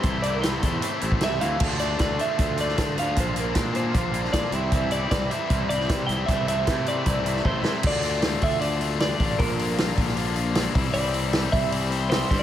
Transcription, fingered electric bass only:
\new Staff \with { instrumentName = "Fingered electric bass" } { \clef bass \time 4/4 \key d \minor \tempo 4 = 154 c,4. e,8 r8 a,,8 c,8 d,8 | d,4 d,8 r8 d,4 d8 d,8 | bes,,4 bes,4 bes,,4 bes,,16 r16 c,8~ | c,4 c,8 r8 c,4 c8 c,8 |
c,4 c4 c,4 a,,8 r8 | d,4. d,2 a,,8 | bes,,4. bes,,2 c,8 | c,4. c,2 g,8 | }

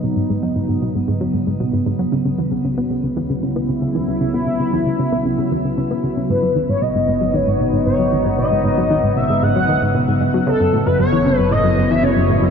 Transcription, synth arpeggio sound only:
\new Staff \with { instrumentName = "Synth arpeggio sound" } { \clef bass \time 4/4 \key gis \minor \tempo 4 = 115 b,16 gis,16 gis,16 fis16 gis,16 gis,16 b,16 gis,16 gis,16 fis16 gis,16 gis,16 b,16 gis,16 gis,16 fis16 | cis16 cis16 e16 cis16 cis16 b16 cis16 cis16 e16 cis16 cis16 b16 cis16 cis16 e16 cis16 | cis16 b16 cis16 cis16 e16 cis16 cis16 b16 cis16 cis16 e16 cis16 cis16 b16 cis16 cis16 | gis,16 fis16 dis16 gis,16 b,16 gis,16 gis,16 fis16 dis16 gis,16 b,16 gis,16 gis,16 fis16 dis16 gis,16 |
b,16 gis,16 gis,16 fis16 dis16 gis,16 b,16 gis,16 gis,16 fis16 dis16 gis,16 b,16 gis,16 gis,16 fis16 | cis16 fis,16 a,16 fis,16 fis,16 e16 cis16 fis,16 a,16 fis,16 fis,16 e16 cis16 fis,16 a,16 fis,16 | }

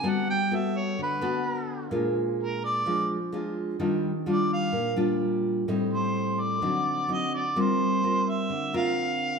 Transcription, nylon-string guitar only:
\new Staff \with { instrumentName = "Nylon-string guitar" } { \time 4/4 \key g \lydian \tempo 4 = 128 << { <b fis' a'>8 r8 <b fis' a'>4. <b fis' a'>4. | <aes d' f'>2 <aes d' f'>8 r8 <aes d' f'>4 | <g d' f'>8 r8 <g d' f'>4 r8 <g d' f'>4. | <g c' ees'>2 <fis c' ees'>4 <fis c' ees'>8 r8 |
<c' f' bes'>4 <c' f' bes'>4. <c' f' bes'>4. | } \\ { g2 d2 | bes,2 f2 | ees2 bes,2 | a,2 d2 |
g2 d2 | } >> }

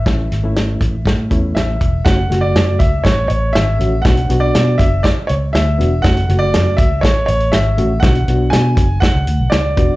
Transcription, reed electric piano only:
\new Staff \with { instrumentName = "Reed electric piano" } { \time 4/4 \key fis \minor \tempo 4 = 120 <a cis' e'>8 r16 <a cis' e'>4 r8. <a cis' e'>4 r8 | <a cis' fis'>16 r16 <cis a fis'>4~ <cis a fis'>16 r4. r16 <a cis' fis'>16 r16 | <b d' fis'>16 r16 <b d' fis'>4~ <b d' fis'>16 r4. r16 <b d' fis'>16 r16 | <a cis' fis'>16 r16 <cis a fis'>4~ <cis a fis'>16 r4. r16 <a cis' fis'>16 r16 |
<b d' fis'>16 r16 <b d' fis'>4~ <b d' fis'>16 r4. r16 <b d' fis'>16 r16 | }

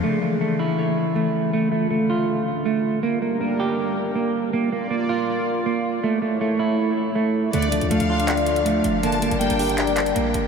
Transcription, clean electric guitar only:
\new Staff \with { instrumentName = "Clean electric guitar" } { \time 4/4 \key d \minor \tempo 4 = 160 a8 a8 a8 e'4. a4 | a8 a8 a8 f'4. a4 | bes8 bes8 bes8 g'4. bes4 | bes8 bes8 bes8 f'4. bes4 |
a8 a8 a8 e'4. a4 | a8 a8 a8 f'4. a4 | bes8 bes8 bes8 g'4. bes4 | }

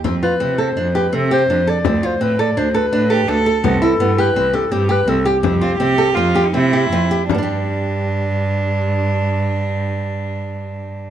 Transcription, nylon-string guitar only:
\new Staff \with { instrumentName = "Nylon-string guitar" } { \time 5/4 \key g \mixolydian \tempo 4 = 166 c'8 f'8 c'8 a'8 d'8 g'8 c'8 g'8 d'8 a'8 | c'8 f'8 c'8 a'8 d'8 a'8 d'8 a'8 d'8 a'8 | b8 e'8 b8 g'8 c'8 g'8 c'8 g'8 c'8 g'8 | c'8 f'8 c'8 a'8 c'8 g'8 c'8 g'8 c'8 g'8 |
<g b d' g'>1~ <g b d' g'>4~ | <g b d' g'>1~ <g b d' g'>4 | }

